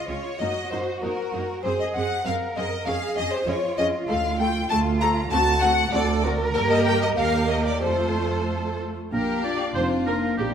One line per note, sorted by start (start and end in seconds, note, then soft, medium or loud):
0.00 0.36 F4 medium
0.08 0.17 C#2 medium
0.08 0.17 C#4 medium
0.08 0.17 F4 medium
0.08 0.38 C#5 medium
0.08 0.39 C#5 medium
0.08 0.40 C#5 medium
0.39 0.48 F#2 medium
0.39 0.48 A#3 medium
0.39 0.48 D#4 medium
0.39 1.62 F#4 medium
0.39 0.71 D#5 medium
0.39 0.69 D#5 medium
0.39 0.72 D#5 medium
0.70 0.79 F#2 medium
0.70 0.79 A#3 medium
0.70 0.80 D#4 medium
0.70 1.00 C5 medium
0.70 1.01 C5 medium
0.70 0.79 C5 medium
1.01 1.10 F#2 medium
1.01 1.11 A#3 medium
1.01 1.10 D#4 medium
1.01 1.60 A#4 medium
1.01 1.63 A#4 medium
1.33 1.41 F#2 medium
1.33 1.42 A#3 medium
1.33 1.42 D#4 medium
1.63 1.72 F#2 medium
1.63 1.72 C4 medium
1.63 1.72 G#4 medium
1.63 2.24 G#4 medium
1.63 1.78 C5 loud
1.63 1.70 C5 medium
1.63 1.79 C5 medium
1.79 1.94 D#5 medium
1.79 1.86 D#5 medium
1.94 2.03 F#2 medium
1.94 2.03 C4 medium
1.94 2.03 G#4 medium
1.94 2.23 F#5 medium
1.94 2.03 F#5 medium
1.94 2.25 F#5 medium
2.25 2.33 F#2 medium
2.25 2.33 C4 medium
2.25 2.33 G#4 medium
2.25 2.85 A#4 medium
2.25 2.53 F5 loud
2.25 2.33 F5 medium
2.25 2.34 F5 medium
2.56 2.64 F#2 medium
2.56 2.64 C4 medium
2.56 2.64 G#4 medium
2.56 2.84 D#5 medium
2.56 2.64 D#5 medium
2.56 2.86 D#5 medium
2.85 2.94 F2 medium
2.85 2.94 C#4 medium
2.85 3.47 G#4 medium
2.85 2.94 G#4 medium
2.85 3.14 F5 loud
2.85 2.95 F5 loud
2.85 3.17 F5 medium
3.16 3.24 F2 medium
3.16 3.25 C#4 medium
3.16 3.25 G#4 medium
3.16 3.30 D#5 loud
3.16 3.32 D#5 medium
3.32 3.46 C5 medium
3.32 3.47 C5 medium
3.32 3.38 C5 medium
3.47 3.55 F2 medium
3.47 3.55 C#4 medium
3.47 4.68 F4 medium
3.47 3.55 G#4 medium
3.47 3.76 C#5 loud
3.47 3.78 C#5 medium
3.47 3.56 C#5 medium
3.78 3.86 F2 medium
3.78 3.86 C#4 medium
3.78 3.86 G#4 medium
3.78 3.86 D#5 medium
3.78 4.07 D#5 loud
4.08 4.63 D2 medium
4.08 4.16 A3 medium
4.08 4.16 A4 medium
4.08 4.39 F5 medium
4.08 4.37 F5 medium
4.08 4.39 F5 medium
4.39 4.47 A3 medium
4.39 4.47 A4 medium
4.39 4.69 G5 loud
4.39 4.68 G5 loud
4.39 4.48 G5 loud
4.69 5.24 D2 loud
4.69 4.78 A3 medium
4.69 5.30 F4 medium
4.69 4.78 A4 medium
4.69 4.78 A5 loud
4.69 4.99 A5 loud
5.00 5.09 A3 medium
5.00 5.09 A4 medium
5.00 5.30 A#5 loud
5.00 5.09 A#5 loud
5.00 5.29 A#5 loud
5.31 5.85 D2 loud
5.31 5.40 C4 medium
5.31 5.91 F#4 medium
5.31 5.40 F#4 medium
5.31 5.39 A5 loud
5.31 5.60 A5 loud
5.31 5.61 A5 loud
5.61 5.70 C4 medium
5.61 5.70 F#4 medium
5.61 5.90 F#5 loud
5.61 5.92 F#5 loud
5.61 5.93 F#5 loud
5.92 6.47 D2 loud
5.92 6.01 C4 medium
5.92 6.01 F#4 medium
5.92 6.23 A4 medium
5.92 6.23 D5 loud
5.92 6.21 D5 loud
5.92 6.23 D5 medium
6.23 6.31 C4 medium
6.23 6.31 F#4 medium
6.23 7.16 A#4 loud
6.54 7.13 G2 loud
6.54 7.13 A#3 medium
6.54 7.14 G4 loud
6.54 6.69 A#4 loud
6.54 6.61 A#4 loud
6.54 6.69 A#4 loud
6.70 6.85 D#5 loud
6.70 6.76 D#5 medium
6.70 6.86 D#5 loud
6.85 7.00 G5 loud
6.85 6.92 G5 loud
6.85 7.01 G5 loud
7.01 7.16 D#5 loud
7.01 7.08 D#5 medium
7.01 7.09 D#5 medium
7.16 7.81 D#2 medium
7.16 7.81 A#3 medium
7.16 7.81 G4 medium
7.16 7.81 A#4 medium
7.16 7.47 F5 loud
7.16 7.26 F5 medium
7.16 7.50 F5 loud
7.48 7.64 D#5 loud
7.48 7.66 D#5 medium
7.48 7.57 D#5 medium
7.65 7.81 D5 medium
7.65 7.73 D5 medium
7.65 7.82 D5 medium
7.81 8.92 F2 medium
7.81 8.90 A3 medium
7.81 8.92 F4 medium
7.81 8.78 A4 medium
7.81 8.76 C5 medium
7.81 8.79 C5 medium
9.11 9.62 A#1 medium
9.11 9.62 A#2 medium
9.11 9.42 A#3 medium
9.11 9.41 D4 medium
9.11 10.34 D4 medium
9.11 9.72 G4 medium
9.11 9.42 A#4 medium
9.11 10.39 F5 medium
9.43 9.58 D4 medium
9.43 9.73 F4 medium
9.43 9.58 D5 medium
9.43 9.75 D5 medium
9.43 9.68 D6 medium
9.75 10.25 F1 medium
9.75 10.25 F2 medium
9.75 10.06 C4 medium
9.75 10.04 D#4 medium
9.75 10.38 F4 medium
9.75 9.89 C5 medium
9.75 9.83 C5 medium
10.06 10.38 A#3 medium
10.06 10.35 D4 medium
10.06 10.37 A#4 medium
10.06 10.15 A#4 medium
10.06 10.30 D6 medium
10.37 10.54 A#1 medium
10.37 10.54 A#2 medium
10.37 10.53 G3 medium
10.37 10.54 A#3 medium
10.37 10.54 C4 medium
10.37 10.54 D#4 medium
10.37 10.52 G4 medium
10.37 10.46 G4 medium
10.37 10.54 G5 medium